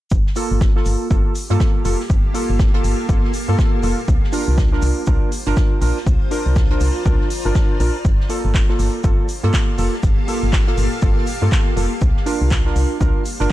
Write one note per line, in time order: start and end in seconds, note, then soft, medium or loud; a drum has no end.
0.11 0.22 G1 medium
0.11 5.55 G4 medium
0.11 kick loud
0.11 shaker medium
0.26 snare soft
0.36 0.72 A#3 medium
0.36 0.73 F4 medium
0.36 0.73 A4 medium
0.36 open hi-hat medium
0.36 shaker medium
0.50 0.81 G1 medium
0.50 5.69 A#3 medium
0.61 kick loud
0.61 snare loud
0.61 shaker medium
0.76 1.08 A#3 medium
0.76 1.08 F4 medium
0.76 1.09 A4 medium
0.76 5.15 F5 medium
0.76 snare soft
0.85 0.96 G1 medium
0.85 open hi-hat medium
0.85 shaker medium
1.08 1.21 G1 medium
1.08 1.33 A#3 medium
1.08 1.34 F4 medium
1.08 1.34 A4 medium
1.08 4.08 A5 medium
1.08 kick loud
1.08 shaker medium
1.35 open hi-hat loud
1.35 shaker medium
1.50 1.57 G2 medium
1.50 1.83 A#3 medium
1.50 1.83 F4 medium
1.50 1.83 A4 loud
1.50 closed hi-hat soft
1.60 kick loud
1.60 snare loud
1.60 shaker medium
1.85 1.95 F1 medium
1.85 2.01 A#3 medium
1.85 2.01 F4 medium
1.85 2.02 A4 medium
1.85 open hi-hat medium
1.85 shaker medium
2.00 snare soft
2.10 2.20 G1 medium
2.10 kick loud
2.10 shaker medium
2.34 2.71 A#3 medium
2.34 2.71 F4 medium
2.34 2.71 A4 medium
2.34 open hi-hat loud
2.34 shaker medium
2.50 2.79 G1 medium
2.59 kick loud
2.59 snare loud
2.59 shaker medium
2.74 3.06 A#3 medium
2.74 3.07 F4 medium
2.74 3.07 A4 medium
2.74 closed hi-hat soft
2.84 2.94 G1 medium
2.84 open hi-hat medium
2.84 shaker medium
3.09 3.19 G1 loud
3.09 3.32 A#3 medium
3.09 3.32 F4 medium
3.09 3.32 A4 medium
3.09 kick loud
3.09 shaker medium
3.24 snare soft
3.34 open hi-hat loud
3.34 shaker medium
3.48 3.55 G2 medium
3.48 3.81 A#3 medium
3.48 3.81 F4 medium
3.48 3.81 A4 loud
3.59 kick loud
3.59 snare loud
3.59 shaker medium
3.83 3.94 F1 medium
3.83 4.00 A#3 medium
3.83 4.00 F4 medium
3.83 4.00 A4 medium
3.83 open hi-hat medium
3.83 shaker medium
4.08 4.18 C2 medium
4.08 9.01 F4 medium
4.08 kick loud
4.08 shaker medium
4.24 8.93 C5 medium
4.24 snare soft
4.32 4.69 D4 medium
4.32 4.69 F4 medium
4.32 4.69 A#4 medium
4.32 open hi-hat loud
4.32 shaker medium
4.48 4.77 C2 medium
4.58 kick loud
4.58 snare loud
4.58 shaker medium
4.72 5.05 D4 medium
4.72 5.05 F4 medium
4.72 5.05 A#4 medium
4.72 snare soft
4.82 4.93 C2 medium
4.82 open hi-hat medium
4.82 shaker medium
5.06 5.18 C2 loud
5.06 5.30 D4 medium
5.06 5.30 F4 medium
5.06 5.31 A#4 medium
5.06 kick loud
5.06 shaker medium
5.32 8.89 D5 medium
5.32 open hi-hat loud
5.32 shaker medium
5.47 5.54 G1 medium
5.47 5.79 D4 medium
5.47 5.79 F4 medium
5.47 5.80 A#4 loud
5.47 closed hi-hat soft
5.56 kick loud
5.56 snare loud
5.56 shaker medium
5.81 5.92 A#1 medium
5.81 5.98 D4 medium
5.81 5.98 F4 medium
5.81 5.98 A#4 medium
5.81 8.05 A#5 medium
5.81 open hi-hat medium
5.81 shaker medium
5.97 snare soft
6.07 6.17 C2 loud
6.07 kick loud
6.07 shaker medium
6.31 6.67 D4 medium
6.31 6.67 F4 medium
6.31 6.68 A#4 medium
6.31 open hi-hat loud
6.31 shaker medium
6.46 6.76 C2 medium
6.56 kick loud
6.56 snare loud
6.56 shaker medium
6.71 7.03 D4 medium
6.71 7.03 F4 medium
6.71 7.04 A#4 medium
6.71 closed hi-hat soft
6.80 6.91 C2 medium
6.80 open hi-hat medium
6.80 shaker medium
7.05 7.16 C2 loud
7.05 7.28 D4 medium
7.05 7.29 F4 medium
7.05 7.29 A#4 medium
7.05 kick loud
7.05 shaker medium
7.21 snare soft
7.30 open hi-hat loud
7.30 shaker medium
7.45 7.52 G1 medium
7.45 7.78 D4 medium
7.45 7.78 F4 medium
7.45 7.78 A#4 medium
7.55 kick loud
7.55 snare loud
7.55 shaker medium
7.80 7.90 A#1 medium
7.80 7.96 D4 medium
7.80 7.96 F4 medium
7.80 7.97 A#4 medium
7.80 open hi-hat medium
7.80 shaker medium
8.05 8.15 G1 medium
8.05 13.28 G4 medium
8.05 kick loud
8.05 shaker medium
8.18 12.73 A#3 loud
8.18 snare soft
8.29 8.66 A#3 medium
8.29 8.66 F4 medium
8.29 8.66 A4 medium
8.29 open hi-hat loud
8.29 shaker medium
8.35 13.42 F5 medium
8.45 8.74 G1 medium
8.51 12.02 A5 medium
8.51 kick loud
8.51 snare loud
8.51 clap loud
8.51 shaker medium
8.69 9.01 A#3 medium
8.69 9.02 F4 medium
8.69 9.02 A4 medium
8.69 snare soft
8.79 8.89 G1 medium
8.79 open hi-hat medium
8.79 shaker medium
9.04 9.14 G1 loud
9.04 9.27 A#3 medium
9.04 9.27 F4 medium
9.04 9.27 A4 medium
9.04 kick loud
9.04 shaker medium
9.29 open hi-hat loud
9.29 shaker medium
9.44 9.51 G2 medium
9.44 9.76 A#3 medium
9.44 9.76 F4 medium
9.44 9.76 A4 loud
9.44 closed hi-hat soft
9.53 kick loud
9.53 snare loud
9.53 clap loud
9.53 shaker medium
9.78 9.89 F1 medium
9.78 9.95 A#3 medium
9.78 9.95 F4 medium
9.78 9.95 A4 medium
9.78 open hi-hat medium
9.78 shaker medium
9.93 snare soft
10.03 10.13 G1 loud
10.03 kick loud
10.03 shaker medium
10.28 10.64 A#3 medium
10.28 10.64 F4 medium
10.28 10.64 A4 medium
10.28 open hi-hat loud
10.28 shaker medium
10.43 10.73 G1 medium
10.52 kick loud
10.52 snare loud
10.52 clap loud
10.52 shaker medium
10.67 11.00 A#3 medium
10.67 11.00 F4 medium
10.67 11.00 A4 medium
10.67 closed hi-hat soft
10.77 10.88 G1 medium
10.77 open hi-hat medium
10.77 shaker medium
11.02 11.13 G1 medium
11.02 11.25 A#3 medium
11.02 11.25 F4 medium
11.02 11.26 A4 medium
11.02 kick loud
11.02 shaker medium
11.18 snare soft
11.26 open hi-hat loud
11.26 shaker medium
11.42 11.49 G2 medium
11.42 11.74 A#3 medium
11.42 11.74 F4 medium
11.42 11.75 A4 loud
11.52 kick loud
11.52 snare loud
11.52 clap loud
11.52 shaker medium
11.76 11.87 F1 medium
11.76 11.93 A#3 medium
11.76 11.93 F4 medium
11.76 11.93 A4 medium
11.76 open hi-hat medium
11.76 shaker medium
12.01 12.12 C2 medium
12.01 13.52 F4 medium
12.01 kick loud
12.01 shaker medium
12.17 13.52 D5 medium
12.17 snare soft
12.26 12.62 D4 medium
12.26 12.63 F4 medium
12.26 12.63 A#4 medium
12.26 open hi-hat medium
12.26 shaker medium
12.41 12.71 C2 medium
12.41 13.52 C5 medium
12.50 kick loud
12.50 snare loud
12.50 clap loud
12.50 shaker medium
12.66 12.98 D4 medium
12.66 12.98 F4 medium
12.66 12.99 A#4 medium
12.66 snare soft
12.76 12.86 C2 medium
12.76 open hi-hat medium
12.76 shaker medium
13.00 13.11 C2 medium
13.00 13.24 D4 medium
13.00 13.24 F4 medium
13.00 13.24 A#4 medium
13.00 kick loud
13.00 shaker medium
13.05 13.52 A#5 medium
13.25 open hi-hat loud
13.25 shaker medium
13.40 13.47 G1 medium
13.40 13.52 D4 medium
13.40 13.52 F4 medium
13.40 13.52 A#4 loud
13.40 closed hi-hat soft